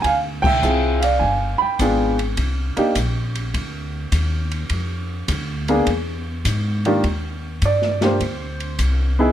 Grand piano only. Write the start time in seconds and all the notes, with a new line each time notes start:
0.02 G#5
0.06 F5
0.42 E5 G5
0.63 C4 E4 F4 G#4
1.00 D5 F5
1.19 F5 G#5
1.58 G5 B5
1.80 B3 D4 F4 G#4
2.77 A#3 D4 D#4 G4
5.69 A#3 B3 D4 G#4
6.86 D#3 A#3 D4 F4 G4
7.65 D5
8.02 A#3 D4 F4 G4 C5
9.19 B3 D#4 E4 G#4